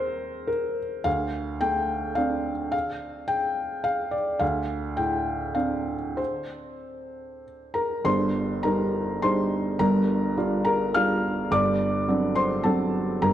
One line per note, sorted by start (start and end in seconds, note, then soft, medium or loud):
0.00 1.01 A#3 soft
0.00 1.01 C4 medium
0.00 0.47 A#4 medium
0.00 0.48 C5 medium
0.47 0.77 A#4 medium
1.04 2.68 D2 medium
1.04 1.61 F5 loud
1.61 2.51 A3 soft
1.61 2.17 G5 medium
2.15 4.37 C4 soft
2.15 4.37 D4 medium
2.15 2.70 F5 medium
2.72 3.28 F5 medium
3.28 3.84 G5 medium
3.84 4.12 F5 medium
4.11 4.40 D5 medium
4.39 6.14 D2 medium
4.39 4.97 F5 medium
4.97 5.94 A2 soft
4.97 5.56 G5 medium
5.55 8.02 C4 soft
5.55 8.02 D4 soft
5.55 6.17 F5 medium
6.17 7.43 C5 medium
7.74 8.04 A#4 medium
7.74 8.05 A#5 medium
8.05 8.62 G1 medium
8.05 8.63 G2 medium
8.05 8.61 C5 medium
8.05 8.64 C6 medium
8.63 9.19 G3 soft
8.63 9.19 D4 soft
8.63 9.19 D#4 soft
8.63 9.19 A#4 medium
8.63 9.22 A#5 medium
9.22 9.76 G3 soft
9.22 9.77 D4 soft
9.22 9.77 D#4 medium
9.22 9.77 C5 medium
9.22 9.80 C6 medium
9.79 10.35 G1 medium
9.79 10.36 G2 medium
9.79 10.62 A#4 medium
9.79 10.63 A#5 loud
10.37 10.90 G3 soft
10.37 10.91 D4 medium
10.37 10.91 F4 medium
10.65 10.93 A#4 medium
10.65 10.94 A#5 medium
10.94 11.48 G3 medium
10.94 11.48 D4 medium
10.94 11.49 F4 medium
10.94 11.22 F5 medium
10.94 11.23 F6 loud
11.51 12.06 G1 medium
11.51 12.07 G2 medium
11.51 12.33 D5 medium
11.51 12.36 D6 loud
12.08 12.61 F#3 medium
12.08 12.62 C4 medium
12.08 12.62 D4 medium
12.35 12.63 C5 medium
12.35 12.65 C6 medium
12.64 13.20 F#3 medium
12.64 13.21 C4 medium
12.64 13.21 D4 medium
12.64 13.21 A4 medium
12.64 13.24 A5 medium
13.22 13.33 G1 medium
13.22 13.33 G2 medium
13.22 13.33 A#4 medium
13.22 13.33 A#5 medium